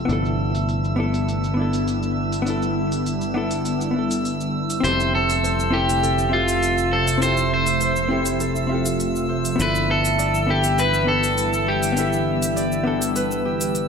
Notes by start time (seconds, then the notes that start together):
Already playing: E6
0.05 G1 D3 G3 B3 D4 E4
0.09 E4 A4, open hi-hat, cabasa
0.25 cabasa
0.55 open hi-hat, cabasa
0.69 open hi-hat, cabasa
0.84 cabasa
0.96 B3 D4 E4 A4
1.14 open hi-hat, cabasa
1.29 open hi-hat, cabasa
1.44 cabasa
1.54 B3 D4
1.59 E4 A4
1.73 open hi-hat, cabasa
1.88 open hi-hat, cabasa
2.03 cabasa
2.33 open hi-hat, cabasa
2.42 B3 D4
2.47 E4 A4, open hi-hat, cabasa
2.62 cabasa
2.92 open hi-hat, cabasa
3.06 open hi-hat, cabasa
3.21 cabasa
3.34 B3 D4 E4 A4
3.51 open hi-hat, cabasa
3.65 open hi-hat, cabasa
3.81 cabasa
3.91 B3 D4
3.96 E4 A4
4.11 open hi-hat, cabasa
4.25 open hi-hat, cabasa
4.41 cabasa
4.70 open hi-hat, cabasa
4.80 F1 C4 E4 E5, open hi-hat, cabasa
4.84 C3 F3 A3 G4 A4 C5 E5
5.00 cabasa
5.15 A4
5.30 open hi-hat, cabasa
5.44 C5, open hi-hat, cabasa
5.60 cabasa
5.71 C4 E4 G4 A4
5.89 open hi-hat, cabasa
6.03 A4, open hi-hat, cabasa
6.19 cabasa
6.29 C4 F4 E5
6.33 F4 G4 A4
6.48 open hi-hat, cabasa
6.63 open hi-hat, cabasa
6.78 cabasa
6.92 A4 C5
7.08 open hi-hat, cabasa
7.18 C4 E4 E5
7.22 G4 A4 C5, open hi-hat, cabasa
7.37 cabasa
7.54 C5
7.67 open hi-hat, cabasa
7.81 C5, open hi-hat, cabasa
7.96 cabasa
8.09 C4 E4 G4
8.13 A4
8.26 open hi-hat, cabasa
8.40 A4, open hi-hat, cabasa
8.56 cabasa
8.67 C4 F4 E5
8.72 G4 A4
8.86 open hi-hat, cabasa
9.00 open hi-hat, cabasa
9.16 cabasa
9.29 C5
9.45 open hi-hat, cabasa
9.56 G1 D3 E3 G3 B3 D4 E4 E5
9.60 E4 A4 B4, open hi-hat, cabasa
9.75 cabasa
9.91 A4
10.05 open hi-hat, cabasa
10.18 D5, open hi-hat, cabasa
10.35 cabasa
10.47 B3 D4 E4 G4 A4
10.64 open hi-hat, cabasa
10.78 B4, open hi-hat, cabasa
10.94 cabasa
11.04 B3 D4 G4
11.08 E4 A4
11.24 open hi-hat, cabasa
11.38 open hi-hat, cabasa
11.53 cabasa
11.67 G4 D5
11.83 open hi-hat, cabasa
11.92 B3 D4
11.97 E4 A4 E5, open hi-hat, cabasa
12.13 cabasa
12.42 open hi-hat, cabasa
12.56 D5, open hi-hat, cabasa
12.72 cabasa
12.83 B3 D4 E4 A4
13.02 open hi-hat, cabasa
13.16 B4, open hi-hat, cabasa
13.31 cabasa
13.45 G4
13.61 open hi-hat, cabasa
13.75 open hi-hat, cabasa